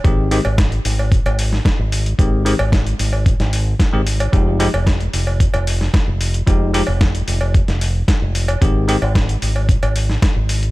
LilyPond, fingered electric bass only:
\new Staff \with { instrumentName = "Fingered electric bass" } { \clef bass \time 4/4 \key aes \major \tempo 4 = 112 aes,,8 r16 aes,,8 r16 aes,,8 r16 aes,,8 r8 aes,,8 r16 | aes,,8 r16 aes,,8 r16 aes,,8 r16 aes,,8 r8 aes,,8 r16 | f,,8 r16 f,,8 r16 f,,8 r16 f,,8 r8 f,,8 r16 | f,,8 r16 f,,8 r16 f,,8 r16 f,,8 r8 f,,8 r16 |
aes,,8 r16 aes,,8 r16 aes,,8 r16 aes,,8 r8 aes,,8 r16 | }